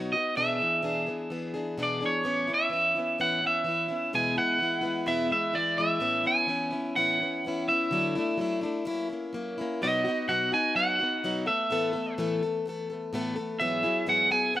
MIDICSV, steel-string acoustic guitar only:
0, 0, Header, 1, 2, 480
1, 0, Start_track
1, 0, Tempo, 472441
1, 376, Time_signature, 4, 2, 24, 8
1, 14834, End_track
2, 0, Start_track
2, 0, Title_t, "Steel-string acoustic guitar"
2, 0, Program_c, 0, 25
2, 0, Note_on_c, 0, 47, 74
2, 0, Note_on_c, 0, 54, 79
2, 0, Note_on_c, 0, 59, 71
2, 0, Note_on_c, 0, 63, 83
2, 0, Note_on_c, 0, 66, 95
2, 124, Note_off_c, 0, 66, 0
2, 136, Note_on_c, 0, 66, 55
2, 137, Note_off_c, 0, 47, 0
2, 139, Note_off_c, 0, 54, 0
2, 145, Note_off_c, 0, 59, 0
2, 146, Note_off_c, 0, 63, 0
2, 168, Note_on_c, 0, 59, 43
2, 361, Note_on_c, 0, 40, 74
2, 365, Note_off_c, 0, 59, 0
2, 373, Note_on_c, 0, 47, 65
2, 376, Note_off_c, 0, 66, 0
2, 376, Note_on_c, 0, 52, 72
2, 378, Note_on_c, 0, 59, 76
2, 383, Note_on_c, 0, 62, 75
2, 386, Note_on_c, 0, 68, 91
2, 587, Note_off_c, 0, 68, 0
2, 599, Note_on_c, 0, 68, 55
2, 600, Note_off_c, 0, 62, 0
2, 607, Note_off_c, 0, 40, 0
2, 612, Note_on_c, 0, 62, 45
2, 613, Note_off_c, 0, 47, 0
2, 613, Note_off_c, 0, 59, 0
2, 615, Note_off_c, 0, 52, 0
2, 625, Note_on_c, 0, 59, 44
2, 632, Note_on_c, 0, 52, 44
2, 830, Note_off_c, 0, 52, 0
2, 834, Note_off_c, 0, 59, 0
2, 837, Note_on_c, 0, 40, 73
2, 840, Note_on_c, 0, 47, 68
2, 842, Note_on_c, 0, 52, 72
2, 843, Note_off_c, 0, 62, 0
2, 846, Note_off_c, 0, 68, 0
2, 846, Note_on_c, 0, 59, 67
2, 855, Note_on_c, 0, 62, 73
2, 857, Note_on_c, 0, 68, 72
2, 1068, Note_off_c, 0, 68, 0
2, 1074, Note_off_c, 0, 62, 0
2, 1080, Note_on_c, 0, 68, 54
2, 1085, Note_off_c, 0, 40, 0
2, 1086, Note_off_c, 0, 47, 0
2, 1086, Note_on_c, 0, 62, 48
2, 1087, Note_off_c, 0, 52, 0
2, 1089, Note_off_c, 0, 59, 0
2, 1101, Note_on_c, 0, 59, 44
2, 1109, Note_on_c, 0, 52, 44
2, 1311, Note_off_c, 0, 52, 0
2, 1323, Note_on_c, 0, 52, 63
2, 1325, Note_off_c, 0, 59, 0
2, 1326, Note_off_c, 0, 68, 0
2, 1329, Note_off_c, 0, 62, 0
2, 1337, Note_on_c, 0, 59, 62
2, 1341, Note_on_c, 0, 62, 63
2, 1357, Note_on_c, 0, 68, 70
2, 1550, Note_off_c, 0, 68, 0
2, 1563, Note_on_c, 0, 68, 49
2, 1565, Note_off_c, 0, 62, 0
2, 1567, Note_off_c, 0, 52, 0
2, 1574, Note_off_c, 0, 59, 0
2, 1577, Note_on_c, 0, 62, 44
2, 1585, Note_on_c, 0, 59, 44
2, 1598, Note_on_c, 0, 52, 34
2, 1801, Note_off_c, 0, 59, 0
2, 1804, Note_on_c, 0, 47, 82
2, 1805, Note_off_c, 0, 52, 0
2, 1805, Note_off_c, 0, 62, 0
2, 1806, Note_off_c, 0, 68, 0
2, 1806, Note_on_c, 0, 40, 77
2, 1814, Note_on_c, 0, 59, 77
2, 1817, Note_on_c, 0, 52, 78
2, 1817, Note_on_c, 0, 62, 77
2, 1827, Note_on_c, 0, 68, 93
2, 2027, Note_off_c, 0, 68, 0
2, 2039, Note_on_c, 0, 68, 51
2, 2042, Note_off_c, 0, 62, 0
2, 2047, Note_off_c, 0, 47, 0
2, 2048, Note_off_c, 0, 40, 0
2, 2052, Note_off_c, 0, 59, 0
2, 2053, Note_off_c, 0, 52, 0
2, 2055, Note_on_c, 0, 62, 55
2, 2065, Note_on_c, 0, 59, 47
2, 2076, Note_on_c, 0, 52, 50
2, 2270, Note_off_c, 0, 52, 0
2, 2272, Note_on_c, 0, 45, 80
2, 2273, Note_off_c, 0, 59, 0
2, 2282, Note_on_c, 0, 52, 74
2, 2284, Note_off_c, 0, 68, 0
2, 2285, Note_on_c, 0, 59, 92
2, 2291, Note_off_c, 0, 62, 0
2, 2295, Note_on_c, 0, 61, 76
2, 2295, Note_on_c, 0, 64, 81
2, 2502, Note_off_c, 0, 64, 0
2, 2513, Note_off_c, 0, 61, 0
2, 2514, Note_on_c, 0, 64, 56
2, 2520, Note_off_c, 0, 45, 0
2, 2526, Note_off_c, 0, 52, 0
2, 2526, Note_on_c, 0, 61, 51
2, 2527, Note_off_c, 0, 59, 0
2, 2542, Note_on_c, 0, 59, 49
2, 2739, Note_on_c, 0, 52, 50
2, 2742, Note_off_c, 0, 59, 0
2, 2754, Note_on_c, 0, 59, 51
2, 2757, Note_off_c, 0, 61, 0
2, 2762, Note_off_c, 0, 64, 0
2, 2769, Note_on_c, 0, 61, 56
2, 2775, Note_on_c, 0, 64, 66
2, 2983, Note_off_c, 0, 64, 0
2, 2994, Note_off_c, 0, 52, 0
2, 2995, Note_on_c, 0, 64, 42
2, 3001, Note_off_c, 0, 59, 0
2, 3005, Note_off_c, 0, 61, 0
2, 3017, Note_on_c, 0, 61, 37
2, 3037, Note_on_c, 0, 59, 37
2, 3236, Note_on_c, 0, 45, 73
2, 3237, Note_off_c, 0, 59, 0
2, 3237, Note_off_c, 0, 61, 0
2, 3242, Note_off_c, 0, 64, 0
2, 3247, Note_on_c, 0, 52, 73
2, 3249, Note_on_c, 0, 59, 85
2, 3249, Note_on_c, 0, 61, 85
2, 3257, Note_on_c, 0, 64, 88
2, 3460, Note_off_c, 0, 64, 0
2, 3472, Note_on_c, 0, 64, 43
2, 3478, Note_off_c, 0, 61, 0
2, 3482, Note_off_c, 0, 45, 0
2, 3487, Note_off_c, 0, 52, 0
2, 3488, Note_off_c, 0, 59, 0
2, 3491, Note_on_c, 0, 61, 38
2, 3507, Note_on_c, 0, 59, 32
2, 3702, Note_on_c, 0, 52, 63
2, 3713, Note_off_c, 0, 59, 0
2, 3716, Note_off_c, 0, 61, 0
2, 3720, Note_off_c, 0, 64, 0
2, 3725, Note_on_c, 0, 59, 58
2, 3728, Note_on_c, 0, 61, 62
2, 3745, Note_on_c, 0, 64, 58
2, 3933, Note_off_c, 0, 64, 0
2, 3945, Note_on_c, 0, 64, 48
2, 3951, Note_off_c, 0, 61, 0
2, 3955, Note_off_c, 0, 52, 0
2, 3963, Note_on_c, 0, 61, 44
2, 3966, Note_off_c, 0, 59, 0
2, 3979, Note_on_c, 0, 59, 40
2, 4196, Note_off_c, 0, 64, 0
2, 4196, Note_on_c, 0, 40, 72
2, 4201, Note_on_c, 0, 47, 76
2, 4202, Note_off_c, 0, 59, 0
2, 4205, Note_off_c, 0, 61, 0
2, 4206, Note_on_c, 0, 52, 85
2, 4206, Note_on_c, 0, 56, 88
2, 4216, Note_on_c, 0, 59, 78
2, 4218, Note_on_c, 0, 64, 84
2, 4416, Note_off_c, 0, 64, 0
2, 4428, Note_on_c, 0, 64, 61
2, 4432, Note_off_c, 0, 59, 0
2, 4441, Note_off_c, 0, 56, 0
2, 4442, Note_off_c, 0, 40, 0
2, 4444, Note_off_c, 0, 47, 0
2, 4444, Note_on_c, 0, 59, 57
2, 4447, Note_off_c, 0, 52, 0
2, 4453, Note_on_c, 0, 56, 48
2, 4465, Note_on_c, 0, 52, 48
2, 4649, Note_off_c, 0, 52, 0
2, 4661, Note_on_c, 0, 52, 53
2, 4665, Note_off_c, 0, 56, 0
2, 4677, Note_on_c, 0, 56, 61
2, 4678, Note_off_c, 0, 64, 0
2, 4679, Note_off_c, 0, 59, 0
2, 4691, Note_on_c, 0, 59, 58
2, 4700, Note_on_c, 0, 64, 61
2, 4877, Note_off_c, 0, 64, 0
2, 4889, Note_on_c, 0, 64, 49
2, 4893, Note_off_c, 0, 59, 0
2, 4906, Note_off_c, 0, 56, 0
2, 4906, Note_on_c, 0, 59, 54
2, 4914, Note_off_c, 0, 52, 0
2, 4918, Note_on_c, 0, 56, 47
2, 4926, Note_on_c, 0, 52, 42
2, 5137, Note_off_c, 0, 52, 0
2, 5142, Note_off_c, 0, 56, 0
2, 5142, Note_on_c, 0, 40, 77
2, 5145, Note_on_c, 0, 47, 72
2, 5146, Note_off_c, 0, 59, 0
2, 5149, Note_off_c, 0, 64, 0
2, 5149, Note_on_c, 0, 52, 76
2, 5154, Note_on_c, 0, 56, 81
2, 5158, Note_on_c, 0, 59, 93
2, 5161, Note_on_c, 0, 64, 88
2, 5368, Note_off_c, 0, 64, 0
2, 5381, Note_on_c, 0, 64, 50
2, 5388, Note_off_c, 0, 59, 0
2, 5395, Note_off_c, 0, 40, 0
2, 5397, Note_off_c, 0, 47, 0
2, 5397, Note_off_c, 0, 56, 0
2, 5399, Note_off_c, 0, 52, 0
2, 5400, Note_on_c, 0, 59, 41
2, 5409, Note_on_c, 0, 56, 38
2, 5422, Note_on_c, 0, 52, 35
2, 5610, Note_off_c, 0, 52, 0
2, 5622, Note_on_c, 0, 52, 60
2, 5629, Note_off_c, 0, 56, 0
2, 5632, Note_off_c, 0, 59, 0
2, 5635, Note_off_c, 0, 64, 0
2, 5642, Note_on_c, 0, 56, 60
2, 5644, Note_on_c, 0, 59, 61
2, 5661, Note_on_c, 0, 64, 66
2, 5853, Note_off_c, 0, 64, 0
2, 5861, Note_off_c, 0, 59, 0
2, 5865, Note_on_c, 0, 64, 48
2, 5873, Note_on_c, 0, 59, 53
2, 5875, Note_off_c, 0, 52, 0
2, 5876, Note_off_c, 0, 56, 0
2, 5889, Note_on_c, 0, 56, 53
2, 5899, Note_on_c, 0, 52, 42
2, 6091, Note_off_c, 0, 52, 0
2, 6099, Note_on_c, 0, 45, 90
2, 6100, Note_off_c, 0, 59, 0
2, 6103, Note_on_c, 0, 52, 80
2, 6108, Note_off_c, 0, 56, 0
2, 6112, Note_on_c, 0, 59, 74
2, 6113, Note_off_c, 0, 64, 0
2, 6116, Note_on_c, 0, 61, 77
2, 6125, Note_on_c, 0, 64, 87
2, 6326, Note_off_c, 0, 64, 0
2, 6338, Note_on_c, 0, 64, 63
2, 6346, Note_off_c, 0, 61, 0
2, 6354, Note_off_c, 0, 45, 0
2, 6356, Note_off_c, 0, 52, 0
2, 6356, Note_off_c, 0, 59, 0
2, 6358, Note_on_c, 0, 61, 51
2, 6368, Note_on_c, 0, 59, 46
2, 6571, Note_on_c, 0, 52, 56
2, 6573, Note_off_c, 0, 59, 0
2, 6585, Note_on_c, 0, 59, 62
2, 6586, Note_off_c, 0, 61, 0
2, 6594, Note_off_c, 0, 64, 0
2, 6598, Note_on_c, 0, 61, 62
2, 6613, Note_on_c, 0, 64, 60
2, 6801, Note_off_c, 0, 64, 0
2, 6813, Note_on_c, 0, 64, 50
2, 6822, Note_off_c, 0, 61, 0
2, 6831, Note_off_c, 0, 52, 0
2, 6835, Note_on_c, 0, 61, 45
2, 6837, Note_off_c, 0, 59, 0
2, 6851, Note_on_c, 0, 59, 40
2, 7069, Note_on_c, 0, 45, 77
2, 7072, Note_off_c, 0, 59, 0
2, 7072, Note_off_c, 0, 64, 0
2, 7075, Note_on_c, 0, 52, 88
2, 7076, Note_off_c, 0, 61, 0
2, 7084, Note_on_c, 0, 59, 90
2, 7088, Note_on_c, 0, 61, 89
2, 7094, Note_on_c, 0, 64, 93
2, 7301, Note_off_c, 0, 64, 0
2, 7313, Note_on_c, 0, 64, 44
2, 7320, Note_off_c, 0, 45, 0
2, 7322, Note_off_c, 0, 61, 0
2, 7323, Note_off_c, 0, 52, 0
2, 7328, Note_off_c, 0, 59, 0
2, 7335, Note_on_c, 0, 61, 41
2, 7345, Note_on_c, 0, 59, 37
2, 7562, Note_off_c, 0, 64, 0
2, 7565, Note_on_c, 0, 52, 59
2, 7567, Note_off_c, 0, 59, 0
2, 7573, Note_off_c, 0, 61, 0
2, 7580, Note_on_c, 0, 59, 66
2, 7590, Note_on_c, 0, 61, 60
2, 7600, Note_on_c, 0, 64, 69
2, 7792, Note_off_c, 0, 64, 0
2, 7805, Note_on_c, 0, 64, 55
2, 7809, Note_off_c, 0, 52, 0
2, 7816, Note_off_c, 0, 59, 0
2, 7817, Note_off_c, 0, 61, 0
2, 7829, Note_on_c, 0, 61, 48
2, 7840, Note_on_c, 0, 59, 52
2, 8036, Note_on_c, 0, 50, 91
2, 8049, Note_off_c, 0, 64, 0
2, 8051, Note_on_c, 0, 54, 90
2, 8052, Note_off_c, 0, 59, 0
2, 8056, Note_off_c, 0, 61, 0
2, 8056, Note_on_c, 0, 57, 85
2, 8060, Note_on_c, 0, 62, 89
2, 8067, Note_on_c, 0, 64, 92
2, 8272, Note_off_c, 0, 64, 0
2, 8284, Note_off_c, 0, 50, 0
2, 8284, Note_on_c, 0, 64, 62
2, 8292, Note_off_c, 0, 54, 0
2, 8294, Note_off_c, 0, 57, 0
2, 8297, Note_off_c, 0, 62, 0
2, 8308, Note_on_c, 0, 62, 56
2, 8318, Note_on_c, 0, 57, 51
2, 8509, Note_on_c, 0, 54, 66
2, 8511, Note_off_c, 0, 57, 0
2, 8523, Note_on_c, 0, 57, 70
2, 8525, Note_off_c, 0, 62, 0
2, 8529, Note_off_c, 0, 64, 0
2, 8537, Note_on_c, 0, 62, 71
2, 8546, Note_on_c, 0, 64, 80
2, 8738, Note_off_c, 0, 64, 0
2, 8750, Note_on_c, 0, 64, 55
2, 8756, Note_off_c, 0, 62, 0
2, 8761, Note_off_c, 0, 54, 0
2, 8768, Note_off_c, 0, 57, 0
2, 8768, Note_on_c, 0, 62, 53
2, 8788, Note_on_c, 0, 57, 49
2, 8994, Note_on_c, 0, 54, 91
2, 8996, Note_off_c, 0, 57, 0
2, 9000, Note_on_c, 0, 58, 88
2, 9002, Note_off_c, 0, 64, 0
2, 9005, Note_off_c, 0, 62, 0
2, 9009, Note_on_c, 0, 61, 110
2, 9013, Note_on_c, 0, 64, 98
2, 9227, Note_off_c, 0, 64, 0
2, 9240, Note_on_c, 0, 64, 52
2, 9244, Note_off_c, 0, 54, 0
2, 9247, Note_off_c, 0, 58, 0
2, 9248, Note_off_c, 0, 61, 0
2, 9260, Note_on_c, 0, 61, 49
2, 9273, Note_on_c, 0, 58, 47
2, 9476, Note_on_c, 0, 54, 69
2, 9480, Note_off_c, 0, 58, 0
2, 9487, Note_off_c, 0, 64, 0
2, 9492, Note_on_c, 0, 58, 74
2, 9494, Note_off_c, 0, 61, 0
2, 9506, Note_on_c, 0, 61, 67
2, 9512, Note_on_c, 0, 64, 70
2, 9718, Note_off_c, 0, 64, 0
2, 9726, Note_off_c, 0, 54, 0
2, 9731, Note_on_c, 0, 64, 59
2, 9734, Note_off_c, 0, 58, 0
2, 9735, Note_off_c, 0, 61, 0
2, 9747, Note_on_c, 0, 61, 58
2, 9766, Note_on_c, 0, 58, 58
2, 9973, Note_off_c, 0, 64, 0
2, 9975, Note_on_c, 0, 47, 71
2, 9980, Note_on_c, 0, 54, 81
2, 9981, Note_off_c, 0, 61, 0
2, 9984, Note_off_c, 0, 58, 0
2, 9988, Note_on_c, 0, 59, 88
2, 9998, Note_on_c, 0, 66, 93
2, 9999, Note_on_c, 0, 63, 78
2, 10194, Note_off_c, 0, 66, 0
2, 10206, Note_on_c, 0, 66, 53
2, 10214, Note_off_c, 0, 63, 0
2, 10215, Note_off_c, 0, 47, 0
2, 10218, Note_off_c, 0, 54, 0
2, 10222, Note_off_c, 0, 59, 0
2, 10227, Note_on_c, 0, 63, 55
2, 10246, Note_on_c, 0, 59, 51
2, 10444, Note_off_c, 0, 59, 0
2, 10444, Note_on_c, 0, 47, 74
2, 10451, Note_off_c, 0, 66, 0
2, 10455, Note_off_c, 0, 63, 0
2, 10455, Note_on_c, 0, 54, 79
2, 10456, Note_on_c, 0, 59, 81
2, 10465, Note_on_c, 0, 66, 84
2, 10467, Note_on_c, 0, 63, 80
2, 10674, Note_off_c, 0, 66, 0
2, 10686, Note_on_c, 0, 66, 53
2, 10690, Note_off_c, 0, 47, 0
2, 10695, Note_off_c, 0, 54, 0
2, 10696, Note_off_c, 0, 59, 0
2, 10696, Note_off_c, 0, 63, 0
2, 10709, Note_on_c, 0, 63, 52
2, 10719, Note_on_c, 0, 59, 51
2, 10927, Note_off_c, 0, 59, 0
2, 10927, Note_on_c, 0, 54, 60
2, 10931, Note_off_c, 0, 66, 0
2, 10939, Note_off_c, 0, 63, 0
2, 10939, Note_on_c, 0, 59, 58
2, 10951, Note_on_c, 0, 63, 69
2, 10962, Note_on_c, 0, 66, 80
2, 11157, Note_off_c, 0, 66, 0
2, 11169, Note_on_c, 0, 66, 47
2, 11171, Note_off_c, 0, 54, 0
2, 11177, Note_off_c, 0, 59, 0
2, 11181, Note_off_c, 0, 63, 0
2, 11193, Note_on_c, 0, 63, 42
2, 11207, Note_on_c, 0, 59, 37
2, 11412, Note_off_c, 0, 66, 0
2, 11416, Note_off_c, 0, 59, 0
2, 11418, Note_on_c, 0, 47, 76
2, 11419, Note_off_c, 0, 63, 0
2, 11424, Note_on_c, 0, 54, 86
2, 11428, Note_on_c, 0, 59, 84
2, 11432, Note_on_c, 0, 63, 82
2, 11438, Note_on_c, 0, 66, 83
2, 11641, Note_off_c, 0, 66, 0
2, 11645, Note_on_c, 0, 69, 53
2, 11651, Note_off_c, 0, 59, 0
2, 11657, Note_off_c, 0, 47, 0
2, 11659, Note_off_c, 0, 63, 0
2, 11660, Note_off_c, 0, 54, 0
2, 11663, Note_on_c, 0, 59, 51
2, 11678, Note_on_c, 0, 57, 44
2, 11887, Note_on_c, 0, 45, 77
2, 11890, Note_off_c, 0, 69, 0
2, 11891, Note_off_c, 0, 57, 0
2, 11893, Note_on_c, 0, 52, 79
2, 11899, Note_off_c, 0, 59, 0
2, 11904, Note_on_c, 0, 57, 84
2, 11908, Note_on_c, 0, 69, 96
2, 11910, Note_on_c, 0, 59, 90
2, 12107, Note_off_c, 0, 69, 0
2, 12119, Note_on_c, 0, 69, 63
2, 12131, Note_off_c, 0, 45, 0
2, 12133, Note_off_c, 0, 59, 0
2, 12134, Note_off_c, 0, 52, 0
2, 12140, Note_off_c, 0, 57, 0
2, 12145, Note_on_c, 0, 59, 56
2, 12154, Note_on_c, 0, 57, 50
2, 12367, Note_off_c, 0, 69, 0
2, 12372, Note_on_c, 0, 45, 80
2, 12373, Note_off_c, 0, 57, 0
2, 12376, Note_on_c, 0, 52, 95
2, 12380, Note_off_c, 0, 59, 0
2, 12386, Note_on_c, 0, 57, 85
2, 12394, Note_on_c, 0, 59, 100
2, 12397, Note_on_c, 0, 69, 102
2, 12613, Note_off_c, 0, 69, 0
2, 12614, Note_off_c, 0, 45, 0
2, 12616, Note_off_c, 0, 52, 0
2, 12620, Note_off_c, 0, 57, 0
2, 12625, Note_off_c, 0, 59, 0
2, 12625, Note_on_c, 0, 69, 64
2, 12642, Note_on_c, 0, 59, 54
2, 12662, Note_on_c, 0, 57, 49
2, 12859, Note_on_c, 0, 52, 64
2, 12860, Note_off_c, 0, 69, 0
2, 12861, Note_off_c, 0, 57, 0
2, 12868, Note_off_c, 0, 59, 0
2, 12873, Note_on_c, 0, 57, 76
2, 12883, Note_on_c, 0, 59, 82
2, 12894, Note_on_c, 0, 69, 78
2, 13092, Note_off_c, 0, 69, 0
2, 13097, Note_off_c, 0, 52, 0
2, 13104, Note_off_c, 0, 57, 0
2, 13104, Note_on_c, 0, 69, 55
2, 13109, Note_off_c, 0, 59, 0
2, 13122, Note_on_c, 0, 59, 46
2, 13139, Note_on_c, 0, 57, 40
2, 13337, Note_off_c, 0, 57, 0
2, 13337, Note_on_c, 0, 45, 82
2, 13339, Note_off_c, 0, 69, 0
2, 13347, Note_on_c, 0, 52, 92
2, 13348, Note_off_c, 0, 59, 0
2, 13349, Note_on_c, 0, 57, 82
2, 13358, Note_on_c, 0, 59, 103
2, 13364, Note_on_c, 0, 69, 97
2, 13559, Note_off_c, 0, 69, 0
2, 13571, Note_on_c, 0, 69, 69
2, 13575, Note_off_c, 0, 45, 0
2, 13581, Note_off_c, 0, 52, 0
2, 13582, Note_off_c, 0, 57, 0
2, 13584, Note_off_c, 0, 59, 0
2, 13596, Note_on_c, 0, 59, 52
2, 13609, Note_on_c, 0, 57, 48
2, 13813, Note_off_c, 0, 69, 0
2, 13813, Note_on_c, 0, 44, 80
2, 13816, Note_off_c, 0, 59, 0
2, 13823, Note_on_c, 0, 52, 94
2, 13824, Note_off_c, 0, 57, 0
2, 13824, Note_on_c, 0, 54, 87
2, 13828, Note_on_c, 0, 59, 81
2, 13834, Note_on_c, 0, 64, 84
2, 13838, Note_on_c, 0, 68, 89
2, 14037, Note_off_c, 0, 68, 0
2, 14048, Note_off_c, 0, 64, 0
2, 14050, Note_on_c, 0, 68, 59
2, 14053, Note_off_c, 0, 44, 0
2, 14059, Note_off_c, 0, 52, 0
2, 14059, Note_off_c, 0, 54, 0
2, 14060, Note_on_c, 0, 64, 54
2, 14061, Note_off_c, 0, 59, 0
2, 14073, Note_on_c, 0, 59, 50
2, 14083, Note_on_c, 0, 54, 56
2, 14282, Note_off_c, 0, 54, 0
2, 14289, Note_on_c, 0, 44, 80
2, 14290, Note_off_c, 0, 64, 0
2, 14292, Note_off_c, 0, 59, 0
2, 14292, Note_off_c, 0, 68, 0
2, 14294, Note_on_c, 0, 52, 78
2, 14294, Note_on_c, 0, 54, 82
2, 14302, Note_on_c, 0, 64, 80
2, 14304, Note_on_c, 0, 59, 73
2, 14313, Note_on_c, 0, 68, 84
2, 14524, Note_off_c, 0, 68, 0
2, 14531, Note_off_c, 0, 44, 0
2, 14533, Note_off_c, 0, 52, 0
2, 14534, Note_off_c, 0, 54, 0
2, 14535, Note_off_c, 0, 64, 0
2, 14536, Note_on_c, 0, 68, 59
2, 14539, Note_off_c, 0, 59, 0
2, 14547, Note_on_c, 0, 64, 53
2, 14556, Note_on_c, 0, 59, 48
2, 14561, Note_on_c, 0, 54, 46
2, 14759, Note_off_c, 0, 54, 0
2, 14769, Note_off_c, 0, 59, 0
2, 14771, Note_on_c, 0, 54, 62
2, 14774, Note_off_c, 0, 68, 0
2, 14780, Note_off_c, 0, 64, 0
2, 14781, Note_on_c, 0, 59, 60
2, 14791, Note_on_c, 0, 64, 70
2, 14834, Note_off_c, 0, 54, 0
2, 14834, Note_off_c, 0, 59, 0
2, 14834, Note_off_c, 0, 64, 0
2, 14834, End_track
0, 0, End_of_file